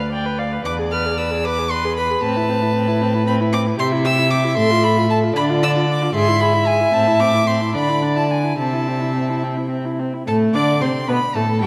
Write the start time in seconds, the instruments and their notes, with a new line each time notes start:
Already playing: cello D2, violin F5
0.00 viola B4
0.12 viola D5, violin G5
0.25 viola B4
0.38 viola D5, violin F5
0.52 viola B4
0.65 cello E2, viola B4, violin D5 D6
0.79 viola G#4
0.92 viola B4, violin F6
1.05 viola G#4
1.18 viola B4, violin E6
1.31 viola G#4
1.44 violin B4 D6, viola B4
1.59 viola G#4
1.71 viola B4, violin C6
1.85 viola G#4
1.97 viola B4, violin B5
2.11 viola G#4
2.23 cello A2, viola C4, violin A5
2.37 viola E4
2.49 viola C4
2.62 viola E4
2.75 viola C4
2.88 viola E4
3.01 viola C4
3.14 viola E4
3.26 viola C4, violin B5
3.40 viola E4
3.53 viola C4, violin D6
3.66 viola E4
3.78 cello C3, viola G4, violin E5 C6
3.92 viola E4
4.04 viola G4, violin E6
4.18 viola E4
4.31 viola G4, violin D6
4.44 viola E4
4.57 cello A2, viola A4, violin C6
4.70 viola F4
4.83 viola A4, violin B5
4.97 viola F4
5.10 viola A4, violin A5
5.23 viola F4
5.36 cello D3, viola D4, violin D5 B5
5.49 viola F4
5.63 viola D4, violin E6
5.76 viola F4
5.89 viola D4, violin D6
6.02 viola F4
6.15 cello G#2, viola G#4, violin E5 C6
6.28 viola E4
6.40 viola G#4, violin B5
6.54 viola E4
6.67 viola G#4, violin G#5
6.80 viola E4
6.93 cello A2, viola C4, violin A5
7.07 viola E4
7.20 viola C4, violin D6
7.34 viola E4
7.47 viola C4, violin C6
7.61 viola E4
7.75 cello D3, viola D4, violin D5 B5
7.89 viola E4
8.02 viola D4
8.16 viola E4, violin A5
8.30 viola D4, violin G#5
8.44 viola E4
8.58 cello C3, viola C4, violin E5 A5
8.73 viola E4
8.87 viola C4
9.01 viola E4
9.15 viola C4
9.29 viola E4
9.43 viola C4
9.57 viola E4
9.71 viola C4
9.85 viola E4
9.99 viola C4
10.13 viola E4
10.27 cello A2, viola A3, violin A4 A5
10.54 cello D3, viola D4, violin D5 D6
10.81 cello C3, viola C4, violin C5 C6
11.08 cello B2, viola B3, violin B4 B5
11.35 cello A2, viola A3, violin A4 A5
11.61 cello G2, viola G3, violin G4 G5